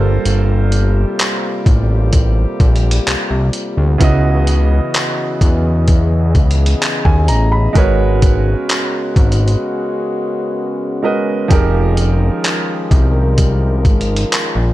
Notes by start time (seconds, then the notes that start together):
Already playing: G1 C3 G3 A#3 F4 G4 A4 A#4 C5
0.26 G1, closed hi-hat
0.72 closed hi-hat
1.19 clap, closed hi-hat
1.66 A1, kick, closed hi-hat
2.13 kick, closed hi-hat
2.60 A#1, kick, closed hi-hat
2.76 closed hi-hat
2.91 closed hi-hat
3.07 C2, clap, closed hi-hat
3.30 C2
3.53 closed hi-hat
3.77 D2
3.98 C#2 C#3 E3 B3 E4 F#4 D#5, kick, closed hi-hat
4.03 D#5
4.47 closed hi-hat
4.94 clap, closed hi-hat
5.41 E2, kick, closed hi-hat
5.88 G#4, kick, closed hi-hat
6.35 C#2, kick, closed hi-hat
6.51 closed hi-hat
6.66 closed hi-hat
6.82 clap, closed hi-hat
7.05 D#2 G#5, kick
7.28 A1 A#5, closed hi-hat
7.52 B5
7.73 G#1 G#3 C#4 F#4 A#4 B4, kick, closed hi-hat
7.78 C#5
8.22 kick, closed hi-hat
8.69 clap, closed hi-hat
9.16 G#1, kick, closed hi-hat
9.32 closed hi-hat
9.48 closed hi-hat
11.03 G#3 F#4 A#4 B4 D#5
11.48 F1 D#3 F3 G#3 D#4 F4 G4 G#4 A#4, kick, closed hi-hat
11.53 A#4
11.97 closed hi-hat
12.44 clap, closed hi-hat
12.91 C2, kick, closed hi-hat
13.38 kick, closed hi-hat
13.85 G#1, kick, closed hi-hat
14.01 closed hi-hat
14.16 closed hi-hat
14.32 clap, closed hi-hat
14.55 A#1